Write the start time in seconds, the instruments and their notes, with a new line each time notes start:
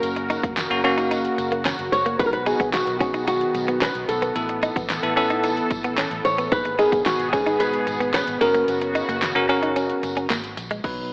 Already playing: analog synth pad C#3 F#4 A#4, tine electric piano A#3 C#4 F#4, nylon-string guitar A#4
0.03 fingered electric bass F#1, closed hi-hat, tambourine
0.16 muted clean electric guitar stroke, closed hi-hat
0.30 clean electric guitar D#4, closed hi-hat, tambourine
0.43 fingered electric bass F#1, clean electric guitar A#3, kick, closed hi-hat
0.57 muted clean electric guitar stroke, snare, clap, closed hi-hat, tambourine
0.70 fingered electric bass F#1, tine electric piano A#3 C#4 F#4, closed hi-hat, tambourine
0.84 tine electric piano A#3 C#4 F#4, clean electric guitar C#4, closed hi-hat, tambourine
0.98 clean electric guitar D#4, closed hi-hat, tambourine
1.11 clean electric guitar D#4, closed hi-hat, tambourine
1.25 closed hi-hat
1.38 fingered electric bass F#1, muted clean electric guitar stroke, closed hi-hat, tambourine
1.52 clean electric guitar A#3, closed hi-hat
1.65 clean electric guitar C#4, snare, clap, closed hi-hat, tambourine
1.79 fingered electric bass F#1, closed hi-hat
1.92 fingered electric bass F#1, nylon-string guitar C#5, muted clean electric guitar stroke, closed hi-hat, tambourine
2.06 clean electric guitar A#3, closed hi-hat
2.19 fingered electric bass B1, analog synth pad D#3 B3, tine electric piano B3 D#4 F#4, nylon-string guitar B4, kick, closed hi-hat, tambourine
2.26 nylon-string guitar A#4
2.33 nylon-string guitar B4, muted clean electric guitar stroke, closed hi-hat
2.46 tine electric piano B3 D#4 G#4, clean electric guitar D#4, nylon-string guitar G#4, closed hi-hat, tambourine
2.60 fingered electric bass B1, clean electric guitar B3, kick, closed hi-hat
2.73 nylon-string guitar F#4, muted clean electric guitar stroke, snare, clap, closed hi-hat, tambourine
2.87 fingered electric bass B1, closed hi-hat, tambourine
3.00 tine electric piano B3 D#4 G#4, clean electric guitar C#4, nylon-string guitar F#4, kick, closed hi-hat, tambourine
3.14 clean electric guitar D#4, closed hi-hat, tambourine
3.27 clean electric guitar D#4, nylon-string guitar F#4, closed hi-hat, tambourine
3.41 closed hi-hat
3.54 fingered electric bass B1, muted clean electric guitar stroke, closed hi-hat, tambourine
3.68 clean electric guitar B3, closed hi-hat
3.81 clean electric guitar C#4, nylon-string guitar B4, snare, clap, closed hi-hat, tambourine
3.95 fingered electric bass B1, closed hi-hat
4.09 fingered electric bass B1, nylon-string guitar A4, muted clean electric guitar stroke, closed hi-hat, tambourine
4.22 clean electric guitar B3, closed hi-hat, tambourine
4.35 fingered electric bass A1, analog synth pad E3 A4, tine electric piano B3 E4 A4, closed hi-hat, tambourine
4.49 muted clean electric guitar stroke, closed hi-hat
4.63 clean electric guitar D#4, closed hi-hat, tambourine
4.76 fingered electric bass A1, clean electric guitar B3, kick, closed hi-hat, tambourine
4.90 muted clean electric guitar stroke, snare, clap, closed hi-hat, tambourine
5.03 fingered electric bass A1, tine electric piano B3 E4 A4, closed hi-hat
5.16 tine electric piano B3 E4 A4, clean electric guitar C#4, closed hi-hat, tambourine
5.30 clean electric guitar D#4, closed hi-hat
5.44 clean electric guitar D#4, closed hi-hat, tambourine
5.57 closed hi-hat
5.71 fingered electric bass A1, muted clean electric guitar stroke, kick, closed hi-hat, tambourine
5.84 clean electric guitar B3, closed hi-hat
5.98 clean electric guitar C#4, snare, clap, closed hi-hat, tambourine
6.11 fingered electric bass A1, closed hi-hat
6.25 fingered electric bass A1, nylon-string guitar C#5, muted clean electric guitar stroke, closed hi-hat, tambourine
6.38 clean electric guitar B3, closed hi-hat, tambourine
6.52 fingered electric bass G#1, analog synth pad B2 B3 G#4, tine electric piano A#3 B3 D#4 G#4 B4, nylon-string guitar B4, kick, closed hi-hat, tambourine
6.65 muted clean electric guitar stroke, closed hi-hat
6.79 tine electric piano B3 D#4 G#4 A#4 B4, clean electric guitar D#4, nylon-string guitar G#4, closed hi-hat, tambourine
6.92 fingered electric bass G#1, clean electric guitar B3, kick, closed hi-hat, tambourine
7.06 nylon-string guitar F#4, muted clean electric guitar stroke, snare, clap, closed hi-hat, tambourine
7.19 fingered electric bass G#1, closed hi-hat
7.33 tine electric piano G#3 B3 D#4 G#4 B4, clean electric guitar C#4, nylon-string guitar G#4, kick, closed hi-hat, tambourine
7.46 clean electric guitar D#4, closed hi-hat, tambourine
7.60 clean electric guitar D#4, nylon-string guitar B4, closed hi-hat, tambourine
7.73 closed hi-hat
7.87 fingered electric bass G#1, muted clean electric guitar stroke, closed hi-hat, tambourine
8.00 clean electric guitar B3, closed hi-hat
8.14 clean electric guitar C#4, nylon-string guitar B4, snare, clap, closed hi-hat, tambourine
8.27 fingered electric bass G#1, closed hi-hat
8.41 fingered electric bass F#1, analog synth pad C#3 F#4, tine electric piano C#4 F#4 A#4, nylon-string guitar A#4, muted clean electric guitar stroke, closed hi-hat, tambourine
8.54 clean electric guitar A#3, closed hi-hat
8.68 fingered electric bass F#1, closed hi-hat, tambourine
8.81 muted clean electric guitar stroke, closed hi-hat
8.95 clean electric guitar D#4, closed hi-hat, tambourine
9.08 fingered electric bass F#1, clean electric guitar A#3, closed hi-hat, tambourine
9.22 muted clean electric guitar stroke, snare, clap, closed hi-hat, tambourine
9.35 fingered electric bass F#1, tine electric piano C#4 F#4 A#4, closed hi-hat
9.49 tine electric piano C#4 F#4 A#4, clean electric guitar C#4, closed hi-hat, tambourine
9.63 clean electric guitar D#4, closed hi-hat
9.76 clean electric guitar C#4, closed hi-hat, tambourine
9.90 closed hi-hat
10.03 fingered electric bass F#1, muted clean electric guitar stroke, closed hi-hat, tambourine
10.17 clean electric guitar C#4, closed hi-hat
10.30 fingered electric bass G#1, clean electric guitar A#3, snare, clap, closed hi-hat, tambourine
10.44 closed hi-hat
10.57 fingered electric bass A#1, muted clean electric guitar stroke, closed hi-hat, tambourine
10.71 clean electric guitar G#3, closed hi-hat, tambourine
10.84 fingered electric bass B1, tine electric piano F#3 B3 D#4 B4, kick, crash